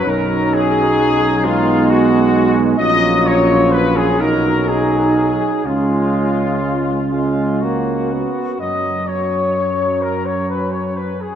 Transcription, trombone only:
\new Staff \with { instrumentName = "Trombone" } { \clef bass \time 6/8 \key fis \major \tempo 4. = 43 fis4. gis4. | fis4. fis4. | gis4. gis8 ais8 b8 | fis2. | }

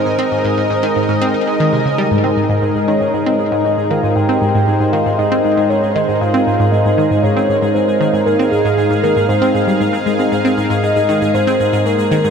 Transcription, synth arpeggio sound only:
\new Staff \with { instrumentName = "Synth arpeggio sound" } { \clef bass \time 4/4 \key aes \major \tempo 4 = 117 aes,16 c'16 aes,16 aes,16 aes,16 aes,16 ees16 aes,16 aes,16 c'16 ees'16 aes16 ees16 c16 des16 g16 | aes,16 c'16 aes,16 aes,16 aes,16 aes,16 ees16 aes,16 aes,16 c'16 aes,16 aes,16 aes,16 aes,16 ees16 aes,16 | aes,16 c'16 aes,16 aes,16 aes,16 aes,16 ees16 aes,16 aes,16 c'16 aes,16 aes,16 aes,16 aes,16 ees16 aes,16 | aes,16 c'16 aes,16 aes,16 aes,16 aes,16 ees16 aes,16 aes,16 c'16 aes,16 aes,16 aes,16 aes,16 ees16 aes,16 |
aes,16 c'16 aes,16 aes,16 aes,16 aes,16 ees16 aes,16 aes,16 c'16 aes,16 g16 aes,16 c'16 aes16 c'16 | aes,16 c'16 aes,16 aes,16 aes,16 aes,16 ees16 aes,16 aes,16 c'16 aes,16 aes,16 aes,16 aes,16 ees16 aes,16 | }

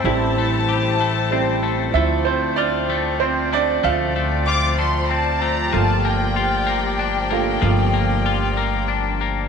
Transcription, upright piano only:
\new Staff \with { instrumentName = "Upright piano" } { \time 6/8 \key d \minor \tempo 4. = 63 << { r2. | e''8 <c' c''>8 <d' d''>4 <c' c''>8 <d' d''>8 | <f' f''>2~ <f' f''>8 r8 | r2. |
r2. | } \\ { <g c' e'>2 <g c' e'>8 r8 | <f c' e'>4. r4. | <f c' e''>4. r4. | <a bes f'>4. r4 <a bes f'>8 |
<a bes f'>2. | } >> }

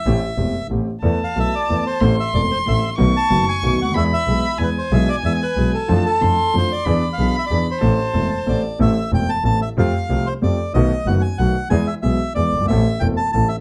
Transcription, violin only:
\new Staff \with { instrumentName = "Violin" } { \time 3/4 \key a \minor \tempo 4 = 185 r2. | a''2. | c'''2. | cis'''2. |
b''2 gis''4~ | gis''2. | a''4 c'''2 | b''2. |
a''2~ a''8 r8 | r2. | r2. | r2. |
r2. | r2. | }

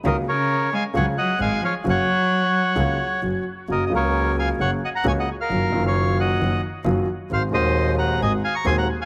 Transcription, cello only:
\new Staff \with { instrumentName = "Cello" } { \clef bass \time 4/4 \key dis \minor \tempo 4 = 133 dis8 cis4 gis8 fis8 fis8 gis8 eis8 | fis2. r4 | r1 | r1 |
r1 | }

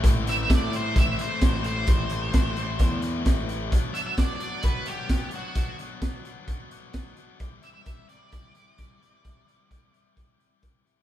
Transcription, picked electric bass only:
\new Staff \with { instrumentName = "Picked electric bass" } { \clef bass \time 4/4 \key a \dorian \tempo 4 = 130 a,,4 a,4 a,,8 r8 a,,4 | a,,4 a,,4 e,4 a,,4 | r1 | r1 |
r1 | r1 | }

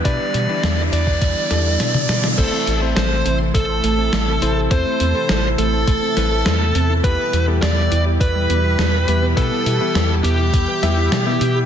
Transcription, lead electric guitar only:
\new Staff \with { instrumentName = "Lead electric guitar" } { \time 4/4 \key a \minor \tempo 4 = 103 d''4. d''2~ d''8 | a'8 r8 c''8 r8 a'2 | c''4. a'2~ a'8 | b'8 r8 d''8 r8 b'2 |
a'4. g'2~ g'8 | }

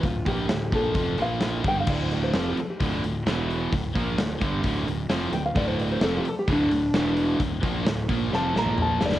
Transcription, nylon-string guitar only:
\new Staff \with { instrumentName = "Nylon-string guitar" } { \time 4/4 \key d \minor \tempo 4 = 130 f'8 g'4 a'4 f''8 r8 g''16 f''16 | d''16 c''16 d''16 c''16 a'16 g'16 a'16 g'16 f'4 r4 | r2. r8 g''16 f''16 | d''16 c''16 d''16 c''16 a'16 g'16 a'16 g'16 d'2 |
r2 a''8 bes''8 a''8 d''8 | }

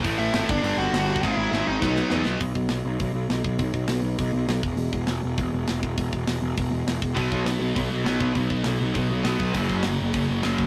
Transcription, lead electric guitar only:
\new Staff \with { instrumentName = "Lead electric guitar" } { \time 4/4 \key fis \mixolydian \tempo 4 = 202 r8 <e' e''>4 <d' d''>8 <d' d''>8 <fis' fis''>4. | <e' e''>4. <dis' dis''>2 r8 | r1 | r1 |
r1 | r1 | r1 | r1 |
r1 | }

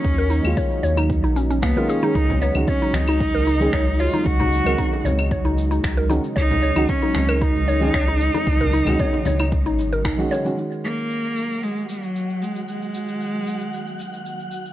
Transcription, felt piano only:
\new Staff \with { instrumentName = "Felt piano" } { \time 4/4 \key ees \minor \tempo 4 = 114 r8. <ees aes des' f'>2~ <ees aes des' f'>8 <ees aes des' f'>8 <ees aes des' aes'>16~ | <ees aes des' aes'>8. <ees aes des' ges'>16 r4. r16 <ees aes des' aes'>16 r4 | r8. <ees aes des' ges'>2~ <ees aes des' ges'>8. <ees aes des' ges'>16 r16 | r8. <ees aes des' ges'>16 r4. r16 <ees aes des' aes'>16 r4 |
r8. <ees aes des' ges'>2~ <ees aes des' ges'>8 <ees aes des' ges'>8 <ees aes des' ges'>16 | <ees aes des' ges'>1~ | <ees aes des' ges'>1 | }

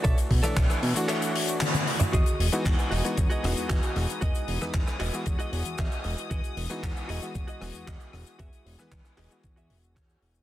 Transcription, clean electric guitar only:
\new Staff \with { instrumentName = "Clean electric guitar" } { \time 4/4 \key e \major \tempo 4 = 115 <a' cis'' d'' e''>16 r8 <a' cis'' d'' e''>8. r8 <a' cis'' d'' e''>4 r4 | <fis' gis' dis''>8 r4 <fis' gis' dis''>16 r8 <fis' gis' dis''>16 r8 <fis' gis' dis''>8 r8 | <fis' gis' dis''>8 r4 <fis' gis' dis''>16 r8 <fis' gis' dis''>16 fis''8 <fis' gis' dis'' e''>8 dis''8 | <fis' gis' dis''>8 r4 <fis' gis' dis''>16 r8 <fis' gis' dis''>16 r8 <fis' gis' dis''>8 r8 |
<fis' gis' e''>8 r4 <fis' gis' dis''>16 r8 <fis' gis' e''>16 r8 <fis' gis' cis''>8 r8 | }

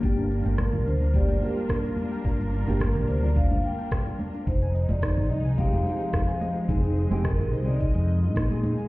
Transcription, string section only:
\new Staff \with { instrumentName = "String section" } { \time 4/4 \key g \phrygian \tempo 4 = 108 << { f'1~ | f'1 | ees'1 | ees''2.~ ees''8 bes8 | } \\ { <g d' bes'>1~ | <g d' bes'>1 | <f aes c'>1~ | <f aes c'>2.~ <f aes c'>8 <aes ees'>8 | } >> }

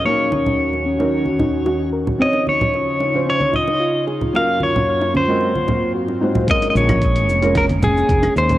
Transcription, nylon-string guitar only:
\new Staff \with { instrumentName = "Nylon-string guitar" } { \time 4/4 \key bes \minor \tempo 4 = 112 <ges des' ees' bes'>4.~ <ges des' ees' bes'>16 <ges des' ees' bes'>8 r4. r16 | <f des' ees' des''>4.~ <f des' ees' des''>16 <f des' ees' c''>8 r4. r16 | <ges des' f' bes'>4.~ <ges des' f' bes'>16 <aes c' f' ges' bes'>8 r4 r16 <aes c' f' ges' c''>8 | <aes des' f' bes'>4.~ <aes des' f' bes'>16 <aes des' f' bes'>8 r4. r16 | }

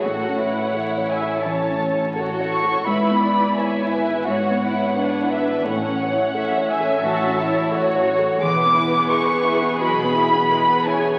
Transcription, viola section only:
\new Staff \with { instrumentName = "Viola section" } { \time 4/4 \key a \major \tempo 4 = 86 a'8 b'8 cis''8 e''8 cis''8 a'8 cis''4 | e''8 d''8 cis''8 b'8 cis''8 b'8 cis''8 b'8 | a'8 cis''8 cis''8 e''4. cis''4 | b'2 gis'4 b'8 cis''8 | }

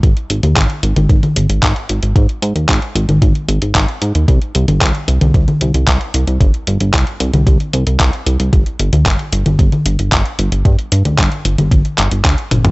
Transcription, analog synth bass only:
\new Staff \with { instrumentName = "Analog synth bass" } { \clef bass \time 4/4 \key c \minor \tempo 4 = 113 aes,,16 r16 aes,,16 ees,16 aes,,16 r16 aes,,16 aes,,16 aes,,16 r16 aes,,16 aes,,16 aes,,16 r16 aes,,16 aes,,16 | aes,16 r16 aes,16 ees,16 aes,,16 r16 aes,,16 aes,,16 aes,,16 r16 aes,,16 aes,,16 aes,,16 r16 aes,16 ees,16 | c,16 r16 c,16 g,,16 c,16 r16 c,16 c,16 c,16 r16 c,16 c,16 c,16 r16 c,16 c,16 | g,,16 r16 g,,16 g,,16 c,16 r16 c,16 c,16 c,16 r16 c,16 c,16 c,16 r16 c,16 c,16 |
g,,16 r16 g,,16 d,16 g,,16 r16 g,,16 g,,16 g,,16 r16 g,,16 g,,16 g,,16 r16 g,,16 g,,16 | g,16 r16 g,16 d,16 g,,16 r16 g,,16 g,,16 g,,16 r16 g,,16 g,,16 d,16 r16 g,,16 g,,16 | }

